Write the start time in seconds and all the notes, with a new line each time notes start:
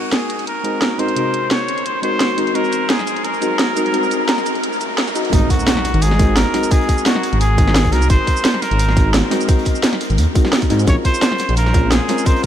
Already playing: G#3 C4 D#4 F#4 A#4, riser
0.13 G#4, snare, closed hi-hat
0.30 closed hi-hat
0.39 closed hi-hat
0.47 A#4, closed hi-hat
0.63 G#3 C4 D#4 F#4 A#4, closed hi-hat
0.82 snare, closed hi-hat
0.98 G#3 C4 D#4 F#4 A#4 C5, closed hi-hat
1.08 closed hi-hat
1.14 C3 G#3 D#4 F#4, closed hi-hat
1.19 A#4
1.34 closed hi-hat
1.51 C#5, snare, closed hi-hat
1.68 closed hi-hat
1.78 closed hi-hat
1.86 C5, closed hi-hat
2.02 G#3 C4 D#4 F#4 A#4 C5, closed hi-hat
2.20 snare, closed hi-hat
2.37 G#3 C4 D#4 F#4 A#4, closed hi-hat
2.47 closed hi-hat
2.53 G#3 C4 D#4 F#4 A#4, closed hi-hat
2.64 shaker
2.73 closed hi-hat, shaker
2.89 G#4, snare, closed hi-hat
2.99 snare, shaker
3.07 closed hi-hat, shaker
3.16 closed hi-hat
3.24 A#4, closed hi-hat
3.34 shaker
3.41 G#3 C4 D#4 F#4 A#4, closed hi-hat, shaker
3.59 snare, closed hi-hat
3.75 G#3 C4 D#4 F#4 A#4, closed hi-hat, shaker
3.86 closed hi-hat
3.92 G#3 C4 D#4 F#4, closed hi-hat
3.96 A#4
4.03 shaker
4.11 closed hi-hat, shaker
4.29 snare, closed hi-hat
4.38 snare, shaker
4.46 closed hi-hat, shaker
4.55 closed hi-hat
4.63 closed hi-hat
4.73 shaker
4.81 closed hi-hat, shaker
4.98 snare, closed hi-hat
5.07 snare, shaker
5.14 G#3 C4 D#4 F#4 A#4, closed hi-hat, shaker
5.25 closed hi-hat
5.31 G#1 G#3 C4 D#4 F#4, kick, closed hi-hat, impact, shaker
5.35 A#4
5.50 F#4, kick, closed hi-hat, shaker
5.60 shaker
5.66 snare, closed hi-hat, shaker
5.77 snare
5.84 snare, closed hi-hat
5.94 G#1, closed hi-hat
6.02 G#4, closed hi-hat, shaker
6.11 snare
6.18 G#3 C4 D#4 F#4 A#4, kick, snare, closed hi-hat, shaker
6.36 G#1 A#4, snare, closed hi-hat, shaker
6.53 G#3 C4 D#4 F#4 A#4, snare, closed hi-hat, open hi-hat
6.63 closed hi-hat, shaker
6.69 G#3 C4 D#4 F#4 G#4, kick, closed hi-hat, shaker
6.73 A#4
6.81 closed hi-hat
6.89 kick, closed hi-hat, shaker
6.98 shaker
7.06 F#4, snare, closed hi-hat, shaker
7.15 snare
7.23 closed hi-hat
7.33 G#1, closed hi-hat
7.41 G#4, closed hi-hat, shaker
7.57 G#3 C4 D#4 F#4 A#4, kick, closed hi-hat, shaker
7.67 snare
7.74 snare, closed hi-hat, shaker
7.85 kick, closed hi-hat
7.92 C2 G#3 C4 D#4 F#4 A#4, snare, closed hi-hat, open hi-hat
8.02 closed hi-hat, shaker
8.08 G#1 G#3 C4 D#4 F#4 C5, kick, closed hi-hat, shaker
8.12 A#4
8.27 kick, closed hi-hat, shaker
8.37 shaker
8.45 snare, closed hi-hat, shaker
8.54 snare
8.62 A#4, snare, closed hi-hat
8.71 G#1, closed hi-hat
8.79 closed hi-hat, shaker
8.89 snare
8.96 G#3 C4 D#4 F#4 A#4, kick, snare, closed hi-hat, shaker
9.14 G#1, snare, closed hi-hat, shaker
9.30 G#3 C4 D#4 F#4 A#4, snare, closed hi-hat, open hi-hat
9.41 closed hi-hat, shaker
9.47 G#3 C4 D#4 F#4, kick, closed hi-hat, shaker
9.51 A#4
9.59 closed hi-hat
9.65 kick, closed hi-hat, shaker
9.75 shaker
9.83 snare, closed hi-hat, shaker
9.93 snare, closed hi-hat
10.01 closed hi-hat
10.10 G#1, closed hi-hat, shaker
10.18 D#2, closed hi-hat, shaker
10.34 G#3 C4 D#4 F#4 A#4, kick, closed hi-hat, shaker
10.45 snare
10.53 snare, closed hi-hat, shaker
10.61 kick, closed hi-hat, shaker
10.69 G#2 G#3 C4 D#4 F#4 A#4, snare, closed hi-hat, open hi-hat
10.79 closed hi-hat, shaker
10.86 A#1 G#3 C4 C#4 F4 A#4 C#5, kick, closed hi-hat, shaker
11.05 C5, kick, closed hi-hat, shaker
11.14 shaker
11.22 snare, closed hi-hat, shaker
11.32 snare
11.38 snare, closed hi-hat
11.49 A#1, closed hi-hat
11.57 A#4, closed hi-hat, shaker
11.66 snare
11.73 G#3 C4 C#4 F4 A#4, kick, snare, closed hi-hat, shaker
11.90 A#1 G#4, snare, closed hi-hat, shaker
12.08 G#3 C4 C#4 F4 A#4, snare, closed hi-hat, open hi-hat
12.18 closed hi-hat, shaker
12.24 G#3 C4 C#4 F4 C5, kick, closed hi-hat, shaker
12.28 A#4
12.36 closed hi-hat